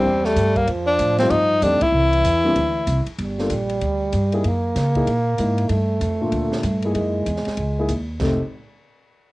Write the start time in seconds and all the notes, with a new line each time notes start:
Already playing: G3 C4
0.05 E2
0.24 A3, snare
0.36 G2, kick, hi-hat pedal, ride
0.56 A#3, kick, ride
0.67 F2 F3, kick, ride
0.87 D4
0.99 A2, kick, hi-hat pedal, ride
1.18 G3 A3 C4 D#4 F4, snare, ride
1.30 G2 D#4, kick, ride
1.62 F2 G3 A3 C4 D4 D#4 G4, kick, hi-hat pedal, ride
1.81 E4, muted upright bass stroke, kick, ride
1.92 C2 E3
2.13 ride
2.24 E2, kick, hi-hat pedal, ride
2.44 G3 A#3 C4 D4 E4
2.56 D2, kick, ride
2.87 C2, kick, hi-hat pedal, ride
3.07 muted upright bass stroke, ride
3.18 G1 G3, kick, ride
3.38 A#3 D4 F4 A4, snare
3.50 A#1, kick, hi-hat pedal, ride
3.69 ride
3.81 D2, kick, ride
4.12 G2, kick, hi-hat pedal, ride
4.32 A#3 D#4 E4 G#4, ride
4.44 F#2 A#3, kick, ride
4.75 C#3, kick, snare, hi-hat pedal, ride
4.95 A#3 D#4 E4 G#4, kick, ride
5.07 A#2, kick, ride
5.38 G#2 A#3 D#4 E4 A#4, kick, hi-hat pedal, ride
5.58 ride
5.69 G2 A3, kick, ride
6.01 F2, kick, hi-hat pedal, ride
6.21 A#2 D4 F4 A4
6.32 D2, kick, ride
6.52 snare
6.63 G2, kick, hi-hat pedal, ride
6.82 A#3 D#4 E4 G#4, ride
6.94 F#2 G#3, kick, ride
7.26 E2, kick, hi-hat pedal, ride
7.36 snare
7.45 muted upright bass stroke, snare, ride
7.57 C#2, kick, ride
7.79 A#3 D#4 E4 G#4
7.89 D#2, kick, hi-hat pedal, ride
8.20 F1 A3 C4 D#4 G4 A4, kick, snare, crash